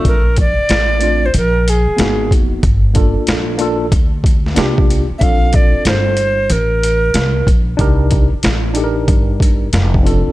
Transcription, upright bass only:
X:1
M:4/4
L:1/16
Q:"Swing 16ths" 1/4=93
K:Gm
V:1 name="Upright bass" clef=bass
B,,,3 z A,,,4 B,,,3 z _A,,,2 F,,,2 | G,,,3 z B,,,4 D,,4 C,,3 z | B,,,3 z G,,,4 A,,,4 C,,2 B,,,2 | C,,3 z A,,,4 G,,,4 F,,,3 z |]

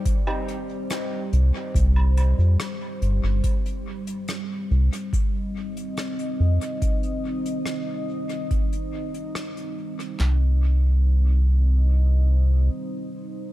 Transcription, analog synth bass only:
X:1
M:4/4
L:1/16
Q:1/4=71
K:Cm
V:1 name="Analog synth bass" clef=bass
z6 C,, z C,,3 F,, z2 G,,, G,,, | z6 C,, z6 z F,, z | z16 | C,,12 z4 |]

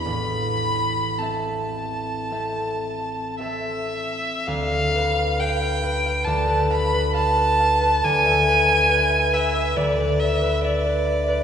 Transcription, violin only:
X:1
M:4/4
L:1/8
Q:1/4=67
K:Am
V:1 name="Violin"
b2 a4 e2 | f2 g2 a b a2 | ^g3 e d e d2 |]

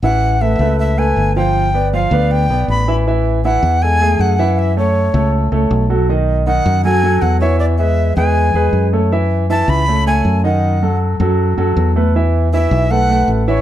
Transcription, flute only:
X:1
M:4/4
L:1/16
Q:1/4=158
K:A
V:1 name="Flute"
f4 e4 e2 g4 =g2- | =g4 =f4 g4 b3 z | z4 f4 g4 f4 | e2 c6 z8 |
z4 f4 g4 f2 c2 | d2 e4 g8 z2 | z4 a2 b4 g4 f2- | f4 z12 |
z4 e4 f4 z2 c2 |]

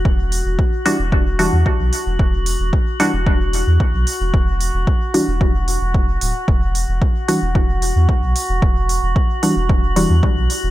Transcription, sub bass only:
X:1
M:4/4
L:1/16
Q:1/4=112
K:Em
V:1 name="Sub bass" clef=bass
E,,,3 E,,, z3 E,,,4 E,, z B,,, z E,,, | E,,,3 E,,, z3 E,,,4 E,, z B,,, z E,,, | E,,,3 E,,, z3 E,,,4 E,,,3 D,,, z | E,,,3 E,,, z3 E,,,4 E,, z B,,, z E,,, |
E,,,3 E,,, z3 E,,,4 E,, z B,,, z E,,, |]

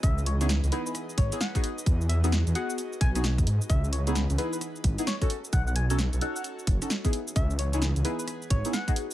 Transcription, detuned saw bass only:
X:1
M:4/4
L:1/16
Q:"Swing 16ths" 1/4=131
K:C#m
V:1 name="Detuned saw bass" clef=bass
C,,4- C,, C,, z4 G,,, z4 z | E,,4- E,, E,, z4 B,,,3 E,, G,, z | C,,4- C,, C,, z4 G,,, z4 z | B,,,4- B,,, B,,, z4 F,,, z4 z |
C,,4- C,, C,, z4 G,,, z4 z |]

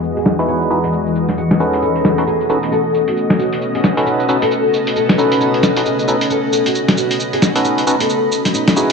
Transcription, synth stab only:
X:1
M:4/4
L:1/16
Q:"Swing 16ths" 1/4=134
K:Bmix
V:1 name="Synth stab"
z3 [DEFGB]3 [DEFGB] z6 z [CDFAB]2- | [CDFAB]3 [CDFAB] z2 [CDFAB] z8 z | z3 [CDFAB]3 [CDFAB] z6 z [CDFAB]2- | [CDFAB]3 [CDFAB] z2 [CDFAB] z8 z |
z3 [CDFAB]3 [CDFAB] z6 z [DEFGB]2 |]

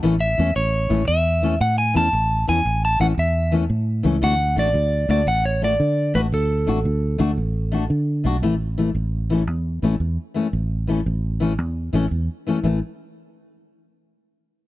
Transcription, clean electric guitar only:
X:1
M:12/8
L:1/8
Q:3/8=114
K:A
V:1 name="Clean electric guitar"
z e2 c3 e3 f g a- | a2 g2 a f e2 z4 | f2 d3 d f c d3 B | A8- A2 z2 |
z12 | z12 | z12 |]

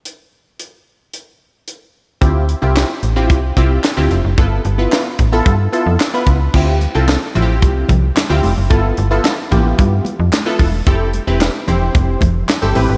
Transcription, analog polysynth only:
X:1
M:4/4
L:1/16
Q:1/4=111
K:Ddor
V:1 name="Analog polysynth"
z16 | [CEFG]2 z [CEFG]2 z2 [CEFG]2 z [CEFG]2 z [CEFG]2 z | [B,EFA]2 z [B,EFB]2 z2 [B,EFA]2 z [B,EFA]2 z [B,EFB]2 z | [CEFG]2 z [CEFA]2 z [CEF^FG]4 z3 [CE=FG]2 z |
[B,EFA]2 z [B,EFA]2 z [_B,=B,EFG]4 z3 [B,EFA]2 z | [CEGA]2 z [CEGB]2 z [CEGc]4 z3 [CEGA] [CEGB]2 |]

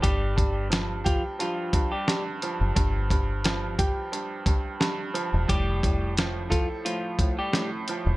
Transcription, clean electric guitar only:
X:1
M:4/4
L:1/16
Q:"Swing 16ths" 1/4=88
K:Fmix
V:1 name="Clean electric guitar"
[G,G]4 z2 [F,F] z [F,F]3 [G,G]2 z3 | z16 | [G,G]4 z2 [F,F] z [F,F]3 [G,G]2 z3 |]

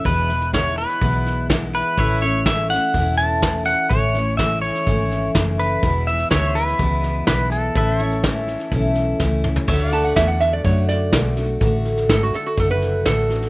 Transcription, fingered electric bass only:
X:1
M:4/4
L:1/8
Q:1/4=124
K:A
V:1 name="Fingered electric bass" clef=bass
E,,,4 B,,,4 | A,,,4 E,,,4 | A,,,4 G,,,2 F,,,2 | E,,,2 D,,2 C,,2 B,,,2 |
A,,,4 B,,,2 C,,2 | D,,2 E,,2 F,,2 B,,,2 | A,,,2 G,,, z F,,,2 A,,,2 |]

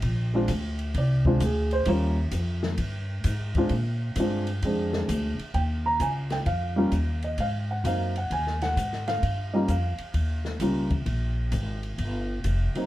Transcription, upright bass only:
X:1
M:4/4
L:1/8
Q:"Swing" 1/4=130
K:Ebmix
V:1 name="Upright bass" clef=bass
B,,,2 =D,,2 C,,2 D,,2 | E,,2 F,,2 G,,2 A,,2 | B,,2 G,,2 F,,2 =D,, z | E,,2 D,,2 F,,2 E,,2 |
A,,2 _G,,2 E,,2 A,,2 | G,,2 F,, z E,,2 D,,2 | B,,,2 A,,,2 G,,,2 F,,, z |]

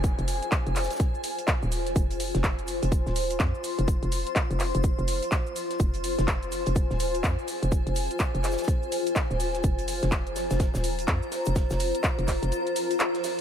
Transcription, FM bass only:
X:1
M:4/4
L:1/16
Q:"Swing 16ths" 1/4=125
K:Fm
V:1 name="FM bass" clef=bass
F,,, F,,,2 z2 F,,,2 z6 E,,,3 | F,,,3 F,,,4 F,,,2 E,,,3 F,, z2 F,,,- | F,,, F,,,2 z2 F,,,2 F,,,2 F,,,2 z4 z | F,,,3 F,,,4 F,,,2 E,,,3 F,, z2 F,,,- |
F,,, F,,,2 z2 F,,,2 z6 E,,,3 | F,,,3 F,,,4 F,,,2 E,,,3 F,, z2 F,,,- | F,,, F,,,2 z2 F,,,2 F,,, z8 |]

